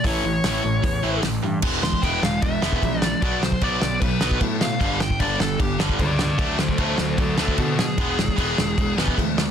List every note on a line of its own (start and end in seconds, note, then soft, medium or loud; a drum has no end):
0.04 0.19 A1 loud
0.04 0.23 A2 medium
0.04 0.23 E3 medium
0.04 0.23 A3 loud
0.04 1.20 C#5 medium
0.04 kick loud
0.04 open hi-hat medium
0.24 0.39 A1 loud
0.24 0.42 A2 medium
0.24 0.42 E3 medium
0.44 0.59 A1 medium
0.44 0.63 A2 loud
0.44 0.62 E3 loud
0.44 0.63 A3 loud
0.44 snare loud
0.44 open hi-hat medium
0.64 0.78 A1 medium
0.64 0.81 A2 medium
0.64 0.81 E3 medium
0.83 0.98 E2 medium
0.83 1.01 A2 medium
0.83 1.01 E3 medium
0.83 kick loud
0.83 open hi-hat medium
1.02 1.18 A1 medium
1.02 1.21 A2 medium
1.02 1.22 E3 loud
1.02 1.22 A3 loud
1.22 1.38 A1 medium
1.22 1.41 A2 medium
1.22 1.41 E3 medium
1.22 snare loud
1.22 open hi-hat medium
1.43 1.57 G2 medium
1.43 1.61 A2 medium
1.43 1.61 E3 medium
1.62 1.93 E1 medium
1.62 1.81 E3 medium
1.62 1.82 G#3 medium
1.62 1.82 B3 medium
1.62 kick loud
1.62 crash loud
1.62 crash medium
1.83 2.01 E3 medium
1.83 2.01 G#3 medium
1.83 2.02 C6 medium
1.83 snare loud
1.93 kick medium
2.02 2.18 E1 medium
2.02 2.21 E3 loud
2.02 2.22 G#3 medium
2.02 2.22 B3 loud
2.02 2.21 G5 medium
2.02 kick medium
2.02 crash medium
2.22 2.38 E1 medium
2.22 2.41 E3 medium
2.22 2.41 G#3 medium
2.22 2.42 F5 medium
2.22 snare loud
2.42 2.57 E1 medium
2.42 2.61 E3 medium
2.42 2.61 G#3 medium
2.42 3.00 E5 loud
2.42 kick loud
2.42 crash medium
2.62 2.78 E1 medium
2.62 2.81 E3 medium
2.62 2.81 G#3 medium
2.62 2.82 B3 loud
2.62 snare loud
2.72 kick medium
2.82 3.13 A#1 medium
2.82 3.00 E3 medium
2.82 3.00 G#3 medium
2.82 kick medium
2.82 crash medium
3.00 3.20 E3 medium
3.00 3.20 G#3 medium
3.00 3.20 D5 loud
3.00 snare loud
3.22 3.52 B1 medium
3.22 3.41 B2 medium
3.22 3.41 F#3 medium
3.22 3.41 B3 medium
3.22 3.42 D5 medium
3.22 kick loud
3.22 crash medium
3.42 3.60 B2 medium
3.42 3.60 F#3 medium
3.42 3.63 C5 medium
3.42 snare loud
3.52 kick medium
3.61 3.77 B1 medium
3.61 3.80 B2 medium
3.61 3.81 F#3 loud
3.61 3.81 B3 loud
3.61 3.79 D5 medium
3.61 kick loud
3.61 crash medium
3.80 3.97 B1 medium
3.80 3.99 B2 medium
3.80 4.00 F#3 medium
3.80 4.00 D5 medium
3.80 snare loud
4.00 4.16 B1 loud
4.00 4.19 B2 medium
4.00 4.19 F#3 medium
4.00 4.39 B4 loud
4.00 kick loud
4.00 crash medium
4.21 4.36 B1 medium
4.21 4.39 B2 loud
4.21 4.40 F#3 loud
4.21 4.40 B3 loud
4.21 snare loud
4.31 kick medium
4.41 4.71 A2 medium
4.41 4.59 B2 medium
4.41 4.59 F#3 medium
4.41 kick medium
4.41 crash medium
4.61 4.79 B2 medium
4.61 4.79 F#3 medium
4.61 5.00 F5 loud
4.61 snare loud
4.79 5.11 G1 loud
4.79 4.99 G2 loud
4.79 4.99 D3 medium
4.79 5.00 G3 medium
4.79 kick loud
4.79 crash medium
5.00 5.18 G2 medium
5.00 5.18 D3 medium
5.00 5.20 G5 medium
5.00 snare loud
5.10 kick medium
5.19 5.35 G1 loud
5.19 5.38 G2 medium
5.19 5.38 D3 loud
5.19 5.39 G3 loud
5.19 5.39 D5 medium
5.19 kick loud
5.19 crash medium
5.39 5.55 G1 medium
5.39 5.57 G2 medium
5.39 5.58 D3 medium
5.39 5.59 A4 medium
5.39 snare loud
5.58 5.75 G1 medium
5.58 5.77 G2 medium
5.58 5.78 D3 medium
5.58 5.79 G4 loud
5.58 kick loud
5.58 crash medium
5.78 5.95 G1 medium
5.78 5.98 G2 medium
5.78 5.98 D3 loud
5.78 5.98 G3 medium
5.78 snare loud
5.89 kick medium
5.99 6.30 C#2 medium
5.99 6.18 G2 medium
5.99 6.18 D3 medium
5.99 6.18 B4 medium
5.99 6.19 D5 loud
5.99 kick medium
5.99 crash medium
6.19 6.37 G2 medium
6.19 6.37 D3 medium
6.19 6.38 B4 medium
6.19 6.38 D5 medium
6.19 snare loud
6.38 6.69 D2 medium
6.38 6.58 D3 medium
6.38 6.58 F#3 loud
6.38 6.58 A3 medium
6.38 6.58 F#4 medium
6.38 6.59 D5 medium
6.38 kick loud
6.38 crash medium
6.59 6.77 D3 medium
6.59 6.77 F#3 medium
6.59 6.78 A4 medium
6.59 6.79 C5 medium
6.59 snare loud
6.68 kick medium
6.78 6.94 D2 medium
6.78 6.97 D3 medium
6.78 6.97 F#3 medium
6.78 6.98 A3 loud
6.78 6.97 A4 medium
6.78 6.97 C5 medium
6.78 kick loud
6.78 crash medium
6.98 7.14 D2 loud
6.98 7.16 D3 medium
6.98 7.17 F#3 medium
6.98 7.17 A4 medium
6.98 7.18 C5 medium
6.98 snare loud
7.18 7.34 D2 medium
7.18 7.37 D3 medium
7.18 7.37 F#3 medium
7.18 7.37 F#4 medium
7.18 7.38 A4 medium
7.18 kick loud
7.18 crash medium
7.37 7.53 D2 medium
7.37 7.57 D3 loud
7.37 7.57 F#3 medium
7.37 7.58 A3 medium
7.37 7.57 F#4 medium
7.37 7.59 A4 medium
7.37 snare loud
7.48 kick medium
7.58 7.89 B2 medium
7.58 7.77 D3 medium
7.58 7.77 F#3 medium
7.58 7.78 F#4 medium
7.58 7.78 A4 medium
7.58 kick medium
7.58 crash medium
7.78 7.97 D3 medium
7.78 7.97 F#3 medium
7.78 8.94 G#4 loud
7.78 snare loud
7.98 8.28 E1 loud
7.98 8.17 E3 medium
7.98 8.18 G#3 loud
7.98 8.18 B3 loud
7.98 kick loud
7.98 crash medium
8.19 8.37 E3 medium
8.19 8.36 G#3 medium
8.19 snare loud
8.28 kick medium
8.38 8.53 E1 medium
8.38 8.57 E3 medium
8.38 8.57 G#3 loud
8.38 8.58 B3 loud
8.38 kick loud
8.38 crash medium
8.58 8.73 E1 loud
8.58 8.76 E3 medium
8.58 8.76 G#3 medium
8.58 snare loud
8.78 8.93 E1 medium
8.78 8.96 E3 medium
8.78 8.96 G#3 medium
8.78 kick loud
8.78 crash medium
8.97 9.12 E1 medium
8.97 9.16 E3 medium
8.97 9.17 G#3 medium
8.97 9.17 B3 loud
8.97 snare loud
9.08 kick medium
9.18 9.48 D2 medium
9.18 9.36 E3 medium
9.18 9.36 G#3 medium
9.18 kick medium
9.18 crash medium
9.38 9.51 E3 medium
9.38 9.51 G#3 medium
9.38 snare loud